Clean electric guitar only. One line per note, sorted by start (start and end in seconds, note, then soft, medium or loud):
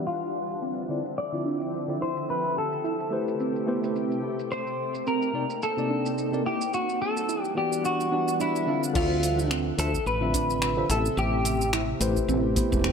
0.07 0.86 F4 medium
1.18 1.97 D5 medium
2.02 2.30 C5 medium
2.30 2.58 B4 medium
2.58 4.20 A4 medium
4.52 5.07 C5 loud
5.08 5.63 A#4 medium
5.63 6.46 A4 medium
6.46 6.74 G4 medium
6.74 7.01 F#4 medium
7.02 7.42 A4 medium
7.42 7.53 G4 medium
7.58 7.85 G4 medium
7.85 8.41 F#4 medium
8.41 8.81 E4 medium
8.96 9.48 F4 loud
9.80 10.07 A4 loud
10.07 10.90 B4 loud
10.91 11.18 A4 medium
11.19 11.70 G4 medium